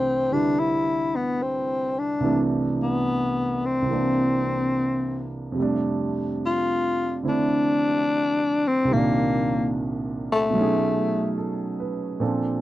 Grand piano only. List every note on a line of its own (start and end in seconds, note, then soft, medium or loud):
0.00 2.19 C2 soft
0.00 2.20 C3 soft
0.00 2.22 E3 soft
0.00 2.23 A3 soft
0.00 2.24 D4 medium
0.31 2.22 D3 soft
0.31 2.22 G3 soft
0.31 2.23 E4 soft
0.31 2.23 B4 soft
2.20 3.81 C2 soft
2.20 3.84 C3 soft
2.20 3.87 E3 soft
2.20 3.89 A3 soft
2.26 3.90 D4 medium
3.82 5.54 C2 soft
3.82 5.53 C3 soft
3.88 5.57 E3 soft
3.88 5.58 A#3 soft
3.93 5.59 D4 soft
5.52 8.87 F2 soft
5.52 8.86 C3 soft
5.57 8.90 G3 soft
5.57 7.22 A3 soft
5.62 8.92 D4 medium
7.23 8.89 D3 soft
7.23 8.90 A3 soft
7.23 8.90 C4 soft
7.23 8.90 E4 soft
8.85 10.53 C2 soft
8.85 10.54 C3 soft
8.91 10.57 A#2 soft
8.91 10.56 D#3 soft
8.96 10.59 D4 medium
10.50 12.18 B2 soft
10.50 12.20 F#3 soft
10.55 12.21 A3 soft
10.55 12.22 C#4 soft
10.60 12.23 D#4 soft
10.60 12.24 G#4 medium
11.38 12.04 A4 soft
11.80 12.38 B4 soft
12.20 12.61 A#2 soft
12.20 12.61 F3 soft
12.20 12.61 C4 soft
12.20 12.61 D4 soft
12.20 12.61 A4 medium